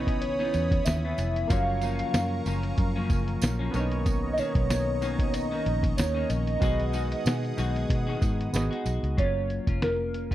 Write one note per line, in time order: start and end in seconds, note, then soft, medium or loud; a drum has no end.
0.00 0.50 B1 medium
0.00 0.39 C#3 medium
0.00 0.39 E3 medium
0.00 0.39 B3 medium
0.00 1.45 B3 medium
0.00 1.46 C#4 medium
0.00 0.38 D#4 medium
0.00 1.46 E4 medium
0.00 1.47 C#5 medium
0.00 0.22 D#5 medium
0.00 1.48 G#5 medium
0.00 1.48 B5 medium
0.00 1.48 D#6 loud
0.07 kick medium
0.07 closed hi-hat medium
0.21 0.86 C#5 medium
0.21 closed hi-hat loud
0.39 1.04 C#3 medium
0.39 1.04 E3 medium
0.39 1.03 B3 medium
0.39 1.03 D#4 medium
0.39 snare soft
0.54 0.80 E2 medium
0.54 closed hi-hat medium
0.54 tambourine soft
0.71 kick loud
0.71 closed hi-hat medium
0.85 1.12 D#2 medium
0.85 1.51 E5 loud
0.85 snare loud
0.85 closed hi-hat medium
0.85 tambourine medium
1.05 1.50 E3 soft
1.05 1.51 B3 soft
1.18 1.44 F1 medium
1.18 closed hi-hat medium
1.18 tambourine soft
1.36 closed hi-hat medium
1.47 2.01 F#1 loud
1.47 1.81 C#3 medium
1.47 1.82 F3 medium
1.47 3.71 F#3 medium
1.47 3.69 A#3 medium
1.47 3.70 F4 medium
1.47 3.72 A#4 medium
1.47 3.72 F5 medium
1.47 1.81 F5 loud
1.47 3.72 A#5 medium
1.47 3.72 C#6 loud
1.47 kick loud
1.47 closed hi-hat loud
1.47 tambourine soft
1.51 1.82 A#3 medium
1.51 1.83 C#4 medium
1.51 3.71 C#5 medium
1.81 2.45 C#3 medium
1.81 2.46 F3 medium
1.81 2.47 A#3 medium
1.81 2.47 C#4 medium
1.81 2.42 F5 loud
1.81 closed hi-hat medium
1.81 tambourine soft
1.99 closed hi-hat medium
2.14 2.40 F#2 loud
2.14 snare loud
2.14 closed hi-hat medium
2.14 tambourine medium
2.46 2.72 F#1 medium
2.46 2.96 F#2 medium
2.46 2.96 C#3 medium
2.46 2.96 F3 medium
2.46 2.95 A#3 medium
2.46 2.94 C#4 medium
2.46 closed hi-hat medium
2.46 tambourine soft
2.63 closed hi-hat medium
2.78 3.11 F#2 medium
2.78 kick loud
2.78 closed hi-hat medium
2.96 3.61 F#2 medium
2.96 3.61 C#3 medium
2.96 3.60 F3 medium
2.96 3.60 A#3 medium
2.96 3.59 C#4 medium
2.96 snare soft
3.10 3.36 F#1 loud
3.10 kick medium
3.10 closed hi-hat medium
3.10 tambourine soft
3.28 closed hi-hat medium
3.42 3.68 A#1 medium
3.42 snare loud
3.42 closed hi-hat medium
3.42 tambourine medium
3.59 3.74 F3 medium
3.59 3.74 A#3 medium
3.59 3.74 C#4 medium
3.71 4.39 B1 loud
3.71 4.36 B2 medium
3.71 4.38 D#3 medium
3.71 6.25 B3 medium
3.71 3.81 D4 medium
3.71 6.26 A#4 medium
3.71 6.59 D#5 medium
3.71 6.59 A#5 medium
3.71 6.59 C#6 medium
3.71 closed hi-hat medium
3.71 tambourine soft
3.75 4.38 A#3 medium
3.75 4.39 C#4 medium
3.75 6.27 C#5 medium
3.79 6.29 D#4 medium
3.92 closed hi-hat soft
4.06 kick loud
4.06 closed hi-hat medium
4.06 tambourine soft
4.33 4.41 D#5 medium
4.37 5.00 B2 medium
4.37 5.02 D#3 medium
4.37 5.01 A#3 medium
4.37 5.02 C#4 medium
4.37 5.35 C#5 medium
4.37 closed hi-hat medium
4.37 tambourine soft
4.55 5.62 B1 medium
4.55 kick loud
4.55 closed hi-hat medium
4.70 snare loud
4.70 closed hi-hat medium
4.70 tambourine medium
5.01 5.51 B2 medium
5.01 5.51 D#3 medium
5.01 5.50 A#3 medium
5.01 5.50 C#4 medium
5.01 closed hi-hat medium
5.01 tambourine soft
5.19 kick medium
5.19 closed hi-hat medium
5.34 5.99 D#5 loud
5.34 closed hi-hat loud
5.34 tambourine soft
5.51 6.17 D#3 medium
5.51 6.15 A#3 medium
5.51 6.13 C#4 medium
5.51 snare soft
5.66 5.92 A#1 medium
5.66 closed hi-hat medium
5.83 kick medium
5.83 closed hi-hat medium
5.97 6.24 D#2 medium
5.97 6.31 C#5 loud
5.97 snare loud
5.97 closed hi-hat medium
5.97 tambourine medium
6.14 6.60 D#3 soft
6.14 6.61 A#3 medium
6.14 6.62 C#4 medium
6.30 6.55 A#1 loud
6.30 8.54 D#5 loud
6.30 closed hi-hat medium
6.30 tambourine soft
6.47 closed hi-hat medium
6.60 7.13 B1 loud
6.60 6.92 D#3 medium
6.60 6.92 G#3 medium
6.60 8.49 B3 medium
6.60 6.93 D#4 medium
6.60 8.50 F#4 medium
6.60 6.94 F#4 medium
6.60 9.15 G#4 medium
6.60 8.51 G#4 medium
6.60 9.15 F#5 medium
6.60 9.15 D#6 loud
6.60 kick loud
6.60 closed hi-hat loud
6.60 tambourine soft
6.64 8.51 D#5 medium
6.80 closed hi-hat soft
6.93 7.57 D#3 medium
6.93 7.57 G#3 medium
6.93 7.58 D#4 medium
6.93 7.59 F#4 medium
6.93 closed hi-hat medium
6.93 tambourine soft
7.12 closed hi-hat medium
7.26 7.52 B2 loud
7.26 snare loud
7.26 closed hi-hat medium
7.26 tambourine medium
7.45 closed hi-hat soft
7.57 7.84 B1 medium
7.57 8.07 B2 loud
7.57 8.07 D#3 loud
7.57 8.06 G#3 loud
7.57 8.06 D#4 loud
7.57 8.05 F#4 loud
7.57 closed hi-hat medium
7.57 tambourine soft
7.76 closed hi-hat medium
7.90 8.16 B2 loud
7.90 kick medium
7.90 closed hi-hat medium
8.06 8.72 B2 medium
8.06 8.72 D#3 medium
8.06 8.72 G#3 medium
8.06 8.71 D#4 medium
8.06 8.70 F#4 medium
8.06 snare soft
8.22 8.48 G#2 medium
8.22 kick medium
8.22 closed hi-hat medium
8.22 tambourine soft
8.41 closed hi-hat medium
8.53 8.68 G#1 medium
8.53 9.18 B3 medium
8.53 9.18 F#4 medium
8.53 9.19 G#4 medium
8.53 9.19 D#5 medium
8.53 snare loud
8.53 closed hi-hat medium
8.53 tambourine medium
8.71 9.18 G#3 soft
8.71 9.18 D#4 medium
8.71 9.18 F#4 medium
8.71 closed hi-hat soft
8.86 9.00 B1 medium
8.86 closed hi-hat medium
8.86 tambourine soft
9.03 9.15 C#2 medium
9.03 closed hi-hat medium
9.17 9.58 F#1 loud
9.17 9.67 F#3 medium
9.17 9.68 A#3 medium
9.17 9.67 C#4 medium
9.17 9.66 F4 medium
9.17 9.79 C#5 loud
9.17 kick loud
9.17 closed hi-hat medium
9.50 closed hi-hat medium
9.67 10.35 F1 medium
9.67 10.33 A#3 soft
9.67 10.32 C#4 soft
9.67 10.30 F4 soft
9.67 kick medium
9.67 closed hi-hat medium
9.82 10.35 A#4 medium
9.82 snare loud
9.82 closed hi-hat medium
10.14 closed hi-hat medium
10.31 10.35 F4 medium
10.31 kick medium